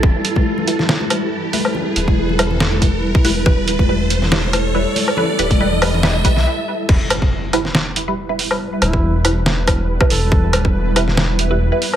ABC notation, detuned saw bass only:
X:1
M:4/4
L:1/16
Q:"Swing 16ths" 1/4=140
K:Em
V:1 name="Detuned saw bass" clef=bass
E,,, z12 z3 | z2 D,,, E,,,8- E,,,2 z E,,,2- | E,,,2 D,,, E,,,8- E,,,2 z3 | z2 D,,, E,,,6- E,,, B,,,2 z4 |
E,,, z12 z3 | z2 D,,, E,,,8- E,,,2 z E,,,2- | E,,,2 D,,, E,,,8- E,,,2 z3 |]